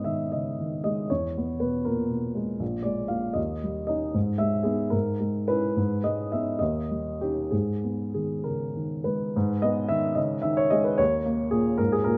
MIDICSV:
0, 0, Header, 1, 2, 480
1, 0, Start_track
1, 0, Key_signature, 5, "minor"
1, 0, Tempo, 508906
1, 1029, Time_signature, 6, 3, 24, 8
1, 2931, Tempo, 525855
1, 4851, Tempo, 562324
1, 6291, Tempo, 612245
1, 8211, Tempo, 541028
1, 10721, End_track
2, 0, Start_track
2, 0, Title_t, "Upright piano"
2, 0, Program_c, 0, 0
2, 0, Control_c, 0, 64, 127
2, 0, Note_on_c, 0, 44, 35
2, 0, Note_on_c, 0, 59, 26
2, 0, Note_on_c, 0, 71, 44
2, 0, Note_on_c, 0, 75, 51
2, 41, Note_on_c, 0, 76, 47
2, 49, Note_on_c, 0, 51, 21
2, 201, Note_off_c, 0, 59, 0
2, 294, Note_off_c, 0, 76, 0
2, 300, Note_off_c, 0, 75, 0
2, 300, Note_on_c, 0, 75, 44
2, 313, Note_on_c, 0, 49, 25
2, 444, Note_off_c, 0, 51, 0
2, 550, Note_off_c, 0, 49, 0
2, 556, Note_on_c, 0, 51, 25
2, 777, Note_off_c, 0, 75, 0
2, 791, Note_on_c, 0, 75, 53
2, 803, Note_on_c, 0, 56, 31
2, 938, Note_off_c, 0, 51, 0
2, 990, Note_off_c, 0, 44, 0
2, 1031, Note_off_c, 0, 75, 0
2, 1036, Note_on_c, 0, 73, 50
2, 1037, Note_off_c, 0, 56, 0
2, 1047, Control_c, 0, 64, 0
2, 1048, Note_on_c, 0, 40, 34
2, 1051, Note_off_c, 0, 71, 0
2, 1175, Control_c, 0, 64, 127
2, 1296, Note_on_c, 0, 59, 32
2, 1508, Note_on_c, 0, 71, 43
2, 1516, Note_off_c, 0, 73, 0
2, 1521, Note_on_c, 0, 47, 25
2, 1669, Note_off_c, 0, 59, 0
2, 1744, Note_on_c, 0, 70, 47
2, 1751, Note_off_c, 0, 71, 0
2, 1755, Note_on_c, 0, 46, 24
2, 1900, Note_off_c, 0, 47, 0
2, 1974, Note_on_c, 0, 47, 26
2, 1987, Note_off_c, 0, 70, 0
2, 1993, Note_off_c, 0, 46, 0
2, 2217, Note_on_c, 0, 56, 37
2, 2358, Note_off_c, 0, 47, 0
2, 2431, Note_off_c, 0, 40, 0
2, 2449, Note_on_c, 0, 34, 36
2, 2454, Note_off_c, 0, 56, 0
2, 2477, Control_c, 0, 64, 0
2, 2590, Control_c, 0, 64, 127
2, 2665, Note_on_c, 0, 74, 49
2, 2680, Note_on_c, 0, 56, 31
2, 2907, Note_on_c, 0, 77, 51
2, 2915, Note_on_c, 0, 58, 29
2, 2918, Note_off_c, 0, 74, 0
2, 2924, Note_on_c, 0, 65, 30
2, 3068, Note_off_c, 0, 56, 0
2, 3138, Note_off_c, 0, 58, 0
2, 3139, Note_on_c, 0, 75, 53
2, 3143, Note_off_c, 0, 65, 0
2, 3145, Note_off_c, 0, 34, 0
2, 3151, Note_on_c, 0, 39, 40
2, 3159, Note_off_c, 0, 77, 0
2, 3190, Control_c, 0, 64, 0
2, 3321, Control_c, 0, 64, 127
2, 3415, Note_on_c, 0, 55, 32
2, 3612, Note_off_c, 0, 75, 0
2, 3626, Note_on_c, 0, 75, 53
2, 3638, Note_on_c, 0, 61, 35
2, 3642, Note_on_c, 0, 63, 42
2, 3793, Note_off_c, 0, 55, 0
2, 3853, Note_off_c, 0, 39, 0
2, 3854, Note_off_c, 0, 61, 0
2, 3856, Note_off_c, 0, 63, 0
2, 3872, Note_off_c, 0, 75, 0
2, 3876, Note_on_c, 0, 44, 41
2, 3902, Control_c, 0, 64, 0
2, 4027, Control_c, 0, 64, 127
2, 4094, Note_on_c, 0, 76, 64
2, 4108, Note_on_c, 0, 56, 32
2, 4321, Note_on_c, 0, 68, 48
2, 4332, Note_on_c, 0, 59, 32
2, 4336, Note_on_c, 0, 63, 30
2, 4343, Note_off_c, 0, 76, 0
2, 4496, Note_off_c, 0, 56, 0
2, 4563, Note_off_c, 0, 59, 0
2, 4565, Note_off_c, 0, 63, 0
2, 4569, Note_on_c, 0, 70, 54
2, 4571, Note_off_c, 0, 44, 0
2, 4583, Note_off_c, 0, 68, 0
2, 4585, Note_on_c, 0, 44, 39
2, 4615, Control_c, 0, 64, 0
2, 4772, Control_c, 0, 64, 127
2, 4840, Note_on_c, 0, 56, 34
2, 5077, Note_off_c, 0, 70, 0
2, 5078, Note_on_c, 0, 71, 68
2, 5090, Note_on_c, 0, 64, 38
2, 5092, Note_on_c, 0, 61, 36
2, 5228, Note_off_c, 0, 56, 0
2, 5299, Note_off_c, 0, 44, 0
2, 5304, Note_off_c, 0, 64, 0
2, 5305, Note_off_c, 0, 61, 0
2, 5324, Note_on_c, 0, 44, 45
2, 5341, Control_c, 0, 64, 0
2, 5513, Control_c, 0, 64, 127
2, 5555, Note_off_c, 0, 71, 0
2, 5557, Note_on_c, 0, 75, 62
2, 5564, Note_on_c, 0, 56, 33
2, 5795, Note_off_c, 0, 75, 0
2, 5797, Note_on_c, 0, 76, 55
2, 5806, Note_on_c, 0, 59, 29
2, 5815, Note_on_c, 0, 63, 29
2, 5943, Note_off_c, 0, 56, 0
2, 6016, Note_off_c, 0, 44, 0
2, 6020, Note_off_c, 0, 59, 0
2, 6025, Note_off_c, 0, 63, 0
2, 6027, Note_on_c, 0, 75, 55
2, 6040, Note_off_c, 0, 76, 0
2, 6042, Note_on_c, 0, 39, 37
2, 6053, Control_c, 0, 64, 0
2, 6189, Control_c, 0, 64, 127
2, 6300, Note_on_c, 0, 55, 28
2, 6525, Note_off_c, 0, 75, 0
2, 6538, Note_on_c, 0, 67, 52
2, 6544, Note_on_c, 0, 61, 29
2, 6550, Note_on_c, 0, 63, 32
2, 6681, Note_off_c, 0, 55, 0
2, 6756, Note_off_c, 0, 39, 0
2, 6759, Note_off_c, 0, 61, 0
2, 6762, Note_off_c, 0, 63, 0
2, 6770, Note_on_c, 0, 68, 44
2, 6778, Note_on_c, 0, 44, 35
2, 6780, Note_off_c, 0, 67, 0
2, 6792, Control_c, 0, 64, 0
2, 6928, Control_c, 0, 64, 127
2, 7026, Note_on_c, 0, 59, 26
2, 7254, Note_off_c, 0, 68, 0
2, 7266, Note_on_c, 0, 68, 38
2, 7275, Note_on_c, 0, 51, 22
2, 7414, Note_off_c, 0, 59, 0
2, 7498, Note_on_c, 0, 70, 40
2, 7506, Note_off_c, 0, 68, 0
2, 7513, Note_on_c, 0, 49, 21
2, 7651, Note_off_c, 0, 51, 0
2, 7744, Note_on_c, 0, 51, 24
2, 7745, Note_off_c, 0, 49, 0
2, 7971, Note_on_c, 0, 71, 49
2, 7976, Note_off_c, 0, 70, 0
2, 7980, Note_on_c, 0, 56, 29
2, 8124, Note_off_c, 0, 51, 0
2, 8181, Note_off_c, 0, 44, 0
2, 8211, Note_off_c, 0, 56, 0
2, 8226, Control_c, 0, 64, 0
2, 8226, Note_on_c, 0, 44, 39
2, 8355, Control_c, 0, 64, 127
2, 8452, Note_off_c, 0, 71, 0
2, 8454, Note_on_c, 0, 75, 55
2, 8460, Note_on_c, 0, 59, 32
2, 8689, Note_on_c, 0, 76, 53
2, 8696, Note_off_c, 0, 75, 0
2, 8701, Note_on_c, 0, 51, 24
2, 8842, Note_off_c, 0, 59, 0
2, 8924, Note_on_c, 0, 75, 48
2, 8931, Note_on_c, 0, 49, 26
2, 8932, Note_off_c, 0, 76, 0
2, 8952, Control_c, 0, 64, 0
2, 9084, Note_off_c, 0, 51, 0
2, 9108, Control_c, 0, 64, 127
2, 9161, Note_on_c, 0, 76, 45
2, 9173, Note_on_c, 0, 51, 27
2, 9175, Note_off_c, 0, 75, 0
2, 9179, Note_off_c, 0, 49, 0
2, 9295, Note_off_c, 0, 76, 0
2, 9296, Note_on_c, 0, 73, 52
2, 9414, Note_on_c, 0, 75, 58
2, 9423, Note_on_c, 0, 56, 34
2, 9425, Note_off_c, 0, 73, 0
2, 9536, Note_on_c, 0, 71, 43
2, 9545, Note_off_c, 0, 75, 0
2, 9573, Note_off_c, 0, 51, 0
2, 9645, Note_off_c, 0, 44, 0
2, 9657, Note_on_c, 0, 73, 55
2, 9665, Note_off_c, 0, 71, 0
2, 9665, Note_on_c, 0, 39, 37
2, 9670, Note_off_c, 0, 56, 0
2, 9690, Control_c, 0, 64, 0
2, 9838, Control_c, 0, 64, 127
2, 9903, Note_on_c, 0, 58, 31
2, 10128, Note_on_c, 0, 68, 48
2, 10137, Note_off_c, 0, 73, 0
2, 10138, Note_on_c, 0, 46, 28
2, 10281, Note_off_c, 0, 58, 0
2, 10366, Note_on_c, 0, 70, 46
2, 10371, Note_off_c, 0, 68, 0
2, 10376, Note_on_c, 0, 44, 26
2, 10393, Control_c, 0, 64, 0
2, 10490, Note_off_c, 0, 70, 0
2, 10497, Note_on_c, 0, 68, 51
2, 10516, Note_off_c, 0, 46, 0
2, 10530, Control_c, 0, 64, 127
2, 10602, Note_on_c, 0, 70, 53
2, 10612, Note_off_c, 0, 44, 0
2, 10614, Note_off_c, 0, 68, 0
2, 10619, Note_on_c, 0, 46, 27
2, 10721, Note_off_c, 0, 39, 0
2, 10721, Note_off_c, 0, 46, 0
2, 10721, Note_off_c, 0, 70, 0
2, 10721, End_track
0, 0, End_of_file